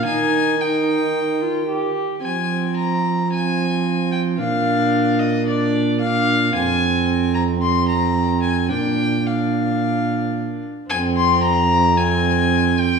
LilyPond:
<<
  \new Staff \with { instrumentName = "Violin" } { \time 4/4 \key f \dorian \tempo 4 = 111 aes''4 g''2 r4 | aes''4 bes''4 aes''4. g''8 | f''4. ees''8 d''4 f''4 | aes''4. bes''8 c'''8 bes''4 aes''8 |
g''4 f''2~ f''8 r8 | aes''8 c'''8 bes''4 aes''4. g''8 | }
  \new Staff \with { instrumentName = "Viola" } { \time 4/4 \key f \dorian ees'4 ees'4. f'8 g'4 | c'2 c'2 | d'2 d'4 d'4 | c'2 c'2 |
d'4 d'2~ d'8 r8 | c'2 c'2 | }
  \new Staff \with { instrumentName = "Trombone" } { \clef bass \time 4/4 \key f \dorian ees2.~ ees8 r8 | f1 | bes,1 | f,1 |
bes,2.~ bes,8 r8 | f,1 | }
>>